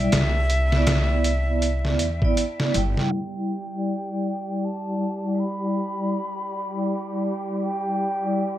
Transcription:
Already playing: flute E5
0.12 upright bass C2, snare, closed hi-hat
0.50 closed hi-hat
0.67 vibraphone B3
0.72 vibraphone E4, snare
0.77 vibraphone D5
0.87 snare, closed hi-hat
1.24 closed hi-hat
1.62 closed hi-hat
1.85 snare
1.99 upright bass E2, closed hi-hat
2.20 vibraphone B3 E4, kick
2.25 vibraphone D5
2.37 closed hi-hat
2.60 snare
2.72 upright bass G1, vibraphone G3 E4, closed hi-hat
2.77 vibraphone G5
2.97 snare
3.12 violin section G3 G4, flute G5
3.67 vibraphone G3
3.72 vibraphone E4
3.77 vibraphone D5
4.65 flute A5
4.97 vibraphone G3 E4
5.03 vibraphone D5
5.35 vibraphone G3 E4
5.40 vibraphone D5, flute B5
5.95 vibraphone G3 E4
5.99 vibraphone D5
6.67 vibraphone G3
6.72 vibraphone E4
6.77 vibraphone D5
7.65 flute G5
8.20 vibraphone G3 E4
8.25 vibraphone D5

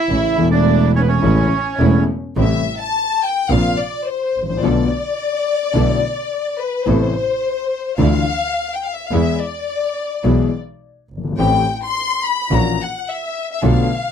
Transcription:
Already playing: bandoneon E4 E5, violin section E4
0.09 double bass A1, grand piano A1 A2 C#3 E3 A3 E4, string section A3 C#4 E4
0.37 double bass E1, grand piano E1 E2 E3 A3 E4, string section A3 E4
0.51 bandoneon D4 D5, violin section D4
0.95 bandoneon C#4 C#5, violin section C#4
1.01 violin section B3, bandoneon B4
1.08 bandoneon C#4 C#5
1.12 violin section C#4
1.22 double bass A1, grand piano A1 A2 C#3 E3 A3 E4, string section A3 C#4 E4
1.79 grand piano E1 E2 C#3 E3 A3 E4, double bass E1, string section A3 C#4 E4
2.37 double bass A1, grand piano A1 A2 C3 G3 A3 E4, string section A3 C4 G4, violin section E5
2.82 violin section A5
3.25 violin section G5
3.50 double bass A#1, grand piano A#1 A#2 C3 F3 A#3 F4, string section A#3 C4 F4, violin section F5
3.79 violin section D5
4.07 violin section C5
4.34 double bass A1
4.43 grand piano G#1
4.49 grand piano A1, violin section C5
4.57 grand piano A#1, violin section D5
4.62 double bass B1, grand piano B1 B2 D3 A3 B3 F4, string section B3 D4 A4
5.74 double bass B1, grand piano B1 B2 D3 A3 B3 E4, string section D4 E4 A4
6.60 violin section B4
6.86 double bass A1, grand piano A1 A2 C3 A3 B3 E4, string section B3 C4 A4, violin section C5
7.98 double bass D2, grand piano D2 D3 E3 A3 D4 F4, string section F3 D4 E4, violin section F5
8.75 violin section G5
8.85 violin section F5
8.95 violin section E5
9.06 violin section F5
9.11 double bass E2, grand piano E2 E3 G#3 B3 G#4, string section G#3 B3 E4, violin section E5
9.41 violin section D5
10.24 grand piano B1 B2 E3 G#3 B3 G#4, double bass B1, string section G#3 B3 E4
11.10 double bass G1
11.17 grand piano F#1
11.25 grand piano G1
11.32 grand piano G#1
11.37 double bass A1, grand piano A1 A2 E3 A3 C4 G4, string section A3 C4 G4, violin section G5
11.84 violin section C6
12.26 violin section B5
12.50 double bass A#1, grand piano A#1 A#2 E3 A#3 C#4 F#4, string section A#3 E4 F#4, violin section A#5
12.82 violin section F#5
13.10 violin section E5
13.52 violin section E5
13.62 grand piano B1 B2 D3 A3 B3 F4, double bass B1, string section B3 D4 A4
13.68 violin section F5

